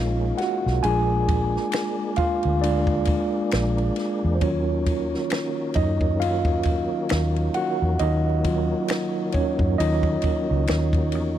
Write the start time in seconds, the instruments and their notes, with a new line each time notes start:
Already playing: fingered electric bass A#1, tonewheel organ G#3 A#3 C#4, tine electric piano G#3 C#4 D#4 F4 D#5 F5
0.38 tine electric piano F#4 F#5, snare, ride
0.66 fingered electric bass B1, snare
0.83 fingered electric bass A#1, tine electric piano G#3 D4 F4 G#4 G#5, tonewheel organ G#3 D4, ride
1.28 kick, ride
1.56 snare
1.72 finger snap, snare, ride
2.16 tine electric piano F4 F5, muted fingered electric bass stroke, kick, ride
2.43 fingered electric bass D2, ride
2.61 tine electric piano G#3 D4 F4 D5, ride
2.87 kick
3.05 kick, ride
3.51 fingered electric bass A#1, finger snap, snare, ride
3.78 ride
3.96 snare, ride
4.24 fingered electric bass E2
4.35 tine electric piano C5
4.41 fingered electric bass D#2, tonewheel organ D#3 F#3 C#4, tine electric piano F#3 C#4 F4 C#5, kick, ride
4.86 kick, ride
5.14 snare
5.30 finger snap, snare, ride
5.74 fingered electric bass F#2, tine electric piano D#4 D#5, kick, ride
6.01 kick
6.20 tine electric piano F4 F5, ride
6.45 kick
6.63 kick, ride
7.09 fingered electric bass D#2, finger snap, snare, ride
7.36 ride
7.54 tine electric piano F#4 F#5, ride
7.82 fingered electric bass E2
7.99 fingered electric bass D#2, tine electric piano D#4 D#5, ride
8.44 tine electric piano F#3 C#4 F4, kick, ride
8.88 finger snap, snare, ride
9.32 tine electric piano C#4 C#5, muted fingered electric bass stroke, kick, ride
9.59 fingered electric bass F#2, kick
9.78 fingered electric bass D#2, tine electric piano F#3 C#4 D#4 F4 D#5, ride
10.03 kick
10.22 muted fingered electric bass stroke, kick, ride
10.51 fingered electric bass C#2
10.67 fingered electric bass D#2, finger snap, snare, ride
10.93 kick, ride
11.12 fingered electric bass E2, ride